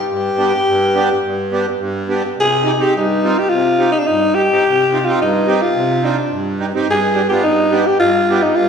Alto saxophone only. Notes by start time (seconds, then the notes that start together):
Already playing: G4
2.40 G#4
2.82 G4
2.97 D#4
3.39 G4
3.49 F4
3.92 D#4
3.99 D4
4.07 D#4
4.35 G4
5.05 F4
5.10 F4 G4
5.22 D#4
5.62 F4
6.05 D4
6.91 G#4
7.29 G4
7.43 D#4
7.87 G4
8.00 F4
8.43 D#4
8.56 F4